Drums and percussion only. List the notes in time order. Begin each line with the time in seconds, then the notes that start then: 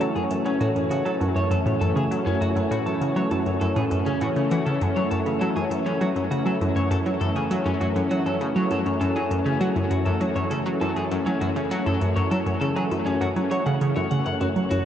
0.01 closed hi-hat
0.16 closed hi-hat, low bongo
0.31 closed hi-hat
0.46 closed hi-hat
0.61 closed hi-hat, low bongo
0.76 closed hi-hat
0.91 closed hi-hat
1.06 closed hi-hat
1.21 closed hi-hat, low bongo
1.37 closed hi-hat
1.51 closed hi-hat
1.67 closed hi-hat, low bongo
1.81 closed hi-hat
1.97 closed hi-hat
2.11 closed hi-hat
2.27 closed hi-hat, low bongo
2.42 closed hi-hat
2.56 closed hi-hat
2.72 closed hi-hat, low bongo
2.86 closed hi-hat
3.01 closed hi-hat
3.16 closed hi-hat
3.31 closed hi-hat, low bongo
3.46 closed hi-hat
3.61 closed hi-hat
3.76 closed hi-hat, low bongo
3.91 closed hi-hat
4.06 closed hi-hat
4.21 closed hi-hat
4.36 closed hi-hat, low bongo
4.51 closed hi-hat
4.66 closed hi-hat
4.81 closed hi-hat
4.96 closed hi-hat, low bongo
5.11 closed hi-hat
5.26 closed hi-hat
5.41 closed hi-hat
5.57 closed hi-hat, low bongo
5.71 closed hi-hat
5.86 closed hi-hat
6.01 closed hi-hat, low bongo
6.16 closed hi-hat
6.32 closed hi-hat
6.46 closed hi-hat
6.61 closed hi-hat, low bongo
6.77 closed hi-hat
6.91 closed hi-hat
7.06 closed hi-hat, low bongo
7.21 closed hi-hat
7.36 closed hi-hat
7.51 closed hi-hat
7.66 closed hi-hat, low bongo
7.81 closed hi-hat
7.96 closed hi-hat
8.11 closed hi-hat, low bongo
8.26 closed hi-hat
8.41 closed hi-hat
8.56 closed hi-hat
8.71 closed hi-hat, low bongo
8.86 closed hi-hat
9.01 closed hi-hat
9.16 closed hi-hat, low bongo
9.31 closed hi-hat
9.46 closed hi-hat
9.61 closed hi-hat
9.76 closed hi-hat, low bongo
9.91 closed hi-hat
10.06 closed hi-hat
10.21 closed hi-hat, low bongo
10.36 closed hi-hat
10.51 closed hi-hat
10.66 closed hi-hat
10.81 closed hi-hat, low bongo
10.96 closed hi-hat
11.11 closed hi-hat
11.26 closed hi-hat, low bongo
11.41 closed hi-hat
11.56 closed hi-hat
11.71 closed hi-hat
11.86 closed hi-hat, low bongo
12.01 closed hi-hat
12.16 closed hi-hat
12.31 closed hi-hat, low bongo
12.47 closed hi-hat
12.62 closed hi-hat
12.77 closed hi-hat
12.92 closed hi-hat, low bongo
13.06 closed hi-hat
13.22 closed hi-hat
13.36 closed hi-hat, low bongo
13.51 closed hi-hat
13.66 closed hi-hat
13.81 closed hi-hat
13.96 closed hi-hat, low bongo
14.11 closed hi-hat
14.26 closed hi-hat
14.41 closed hi-hat
14.56 closed hi-hat
14.71 closed hi-hat, low bongo